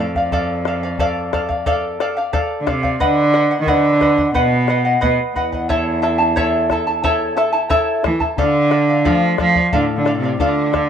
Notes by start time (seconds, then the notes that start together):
Already playing: F2
0.00 A4 D5 F5
0.15 D5 F5, bombo low
0.32 A4 D5 F5, bombo low
0.65 A4 D5 F5, bombo rim
0.83 D5 F5
0.99 A4 D5 F5, bombo low
1.33 A4 D5 F5, bombo rim, bombo low
1.49 D5 F5, bombo low
1.66 A4 D5 F5, bombo low
2.00 A4 D5 F5, bombo rim
2.17 D5 F5
2.33 A4 D5 F5, bombo low
2.60 D3
2.67 C3 A4 D5 F5, bombo rim, bombo low
2.83 D5 F5, bombo low
3.00 D3 B4 D#5 F#5, bombo low
3.34 B4 D#5 F#5, bombo rim
3.51 D#5 F#5
3.61 D#3
3.67 D3 B4 D#5 F#5, bombo low
4.01 B4 D#5 F#5, bombo rim, bombo low
4.18 D#5 F#5, bombo low
4.34 B2 B4 D#5 F#5, bombo low
4.68 B4 D#5 F#5, bombo rim
4.85 D#5 F#5
5.01 B2 B4 D#5 F#5, bombo low
5.36 E2 B4 D#5 F#5, bombo low
5.52 D#5 F#5, bombo low
5.69 E4 A4 C#5 E5 A5, bombo low
6.02 E4 A4 E5 A5, bombo rim
6.18 E4 A4 A5
6.36 E4 A4 C#5 E5 A5, bombo low
6.70 E4 A4 E5 A5, bombo rim, bombo low
6.87 E4 A4 A5
7.04 E4 A4 C#5 E5 A5, bombo low
7.37 E4 A4 E5 A5, bombo rim
7.53 E4 A4 A5
7.70 E4 A4 C#5 E5 A5, bombo low
8.04 E3 E4 A4 E5 A5, bombo rim, bombo low
8.20 E4 A4 A5, bombo low
8.38 D3 A4 D5 F5, bombo low
8.71 A4 D5 F5, bombo rim
8.89 D5 F5
9.05 F3 A3 D4 F4 A4 D5 F5, bombo low
9.38 F3 A4 D5 F5, bombo rim, bombo low
9.55 D5 F5, bombo low
9.72 A2 D3 A4 D5 F5, bombo low
9.97 D3
10.05 A4 D5 F5, bombo rim
10.19 C3
10.23 D5 F5
10.39 D3 A3 D4 F4 A4 D5 F5, bombo low
10.73 A4 D5 F5, bombo rim, bombo low